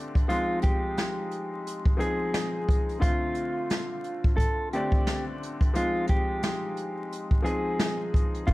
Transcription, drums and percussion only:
0.15 kick, closed hi-hat
0.30 closed hi-hat
0.62 kick, closed hi-hat
0.97 snare, closed hi-hat
1.31 closed hi-hat
1.67 closed hi-hat
1.85 kick
2.00 closed hi-hat
2.34 snare, closed hi-hat
2.69 kick, closed hi-hat
2.89 closed hi-hat
3.02 kick, closed hi-hat
3.35 closed hi-hat
3.70 snare, closed hi-hat
4.04 closed hi-hat
4.24 kick
4.38 kick, closed hi-hat
4.73 closed hi-hat
4.92 kick
5.07 snare, closed hi-hat
5.43 closed hi-hat
5.61 kick, closed hi-hat
5.75 closed hi-hat
6.08 kick, closed hi-hat
6.43 snare, closed hi-hat
6.77 closed hi-hat
7.12 closed hi-hat
7.31 kick
7.46 closed hi-hat
7.79 snare, closed hi-hat
8.14 kick, closed hi-hat
8.34 closed hi-hat
8.48 kick, closed hi-hat

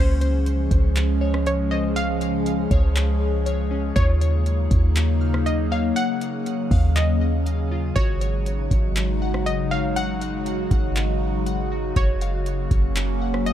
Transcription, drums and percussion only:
0.21 closed hi-hat
0.46 closed hi-hat
0.71 kick, closed hi-hat
0.96 clap, closed hi-hat
1.34 cross-stick
1.46 closed hi-hat
1.96 closed hi-hat
2.21 closed hi-hat
2.46 closed hi-hat
2.71 kick, closed hi-hat
2.96 clap, closed hi-hat
3.46 closed hi-hat
3.96 kick, closed hi-hat
4.21 closed hi-hat
4.46 closed hi-hat
4.71 kick, closed hi-hat
4.96 clap, closed hi-hat
5.34 cross-stick
5.46 closed hi-hat
5.96 closed hi-hat
6.21 closed hi-hat
6.46 closed hi-hat
6.71 kick, open hi-hat
6.96 clap, closed hi-hat
7.46 closed hi-hat
7.96 kick, closed hi-hat
8.21 closed hi-hat
8.46 closed hi-hat
8.71 kick, closed hi-hat
8.96 clap, closed hi-hat
9.34 cross-stick
9.47 closed hi-hat
9.96 closed hi-hat
10.21 closed hi-hat
10.46 closed hi-hat
10.71 kick, closed hi-hat
10.96 clap, closed hi-hat
11.46 closed hi-hat
11.96 kick, closed hi-hat
12.21 closed hi-hat
12.46 closed hi-hat
12.71 kick, closed hi-hat
12.96 clap, closed hi-hat
13.34 cross-stick
13.46 closed hi-hat

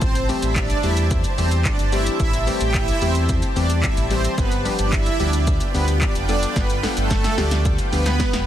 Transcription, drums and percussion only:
0.02 kick, shaker
0.15 closed hi-hat, shaker
0.29 open hi-hat, shaker
0.42 closed hi-hat, shaker
0.56 kick, clap, shaker
0.70 closed hi-hat, shaker
0.83 open hi-hat, shaker
0.97 closed hi-hat, shaker
1.11 kick, shaker
1.24 closed hi-hat, shaker
1.38 open hi-hat, shaker
1.51 closed hi-hat, shaker
1.65 kick, clap, shaker
1.79 closed hi-hat, shaker
1.92 open hi-hat, shaker
2.06 closed hi-hat, shaker
2.20 kick, shaker
2.33 closed hi-hat, shaker
2.47 open hi-hat, shaker
2.61 closed hi-hat, shaker
2.74 kick, clap, shaker
2.88 closed hi-hat, shaker
3.02 open hi-hat, shaker
3.15 closed hi-hat, shaker
3.29 kick, shaker
3.42 closed hi-hat, shaker
3.56 open hi-hat, shaker
3.70 closed hi-hat, shaker
3.83 kick, clap, shaker
3.97 closed hi-hat, shaker
4.11 open hi-hat, shaker
4.25 closed hi-hat, shaker
4.38 kick, shaker
4.52 closed hi-hat, shaker
4.65 open hi-hat, shaker
4.79 closed hi-hat, shaker
4.92 kick, clap, shaker
5.06 closed hi-hat, shaker
5.20 open hi-hat, shaker
5.33 closed hi-hat, shaker
5.47 kick, shaker
5.60 closed hi-hat, shaker
5.75 open hi-hat, shaker
5.88 closed hi-hat, shaker
6.01 kick, clap, shaker
6.15 closed hi-hat, shaker
6.29 open hi-hat, shaker
6.43 closed hi-hat, shaker
6.56 kick, snare, shaker
6.70 closed hi-hat, shaker
6.83 snare, open hi-hat, shaker
6.97 closed hi-hat, shaker
7.10 kick, snare, shaker
7.24 snare, closed hi-hat, shaker
7.38 snare, open hi-hat, shaker
7.51 snare, closed hi-hat, shaker
7.65 kick, shaker
7.78 closed hi-hat, shaker
7.93 open hi-hat, shaker
8.06 snare, closed hi-hat, shaker
8.20 kick, snare, shaker
8.33 snare, closed hi-hat, shaker

